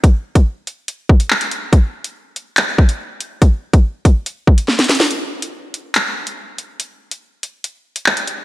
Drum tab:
HH |x-----x-----x---x-----x---x-x---|x-----x-----x---x-----x-----x---|x-----x-----x---x-----x---xxxx--|x-----x-----x---x-----x-----x---|
CP |------------------------x-------|----------------x---------------|--------------------------------|----------------x---------------|
SD |--------------------------------|--------------------------------|------------------------o-o-o-o-|--------------------------------|
BD |o-----o-------------o-----------|o-------------------o-----------|o-----o-----o-------o-----------|--------------------------------|

HH |x-----x-----x---x-----x---x-x---|
CP |------------------------x-------|
SD |--------------------------------|
BD |--------------------------------|